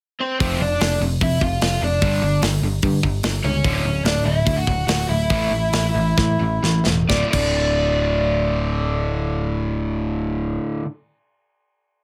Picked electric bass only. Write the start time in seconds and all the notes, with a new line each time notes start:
0.40 F1
0.60 F1
0.80 F1
1.00 F1
1.21 F2
1.41 F1
1.61 F1
1.81 F1
2.02 G1
2.22 G1
2.42 G1
2.62 G1
2.83 G2
3.03 G1
3.44 C#2
3.64 D1
3.85 D1
4.04 D1
4.25 D1
4.46 D2
4.67 D1
4.87 D1
5.09 D1
5.30 A1
5.51 A1
5.73 A1
5.95 A1
6.18 A2
6.40 A1
6.63 A1
6.86 E1
7.10 D1
7.33 D1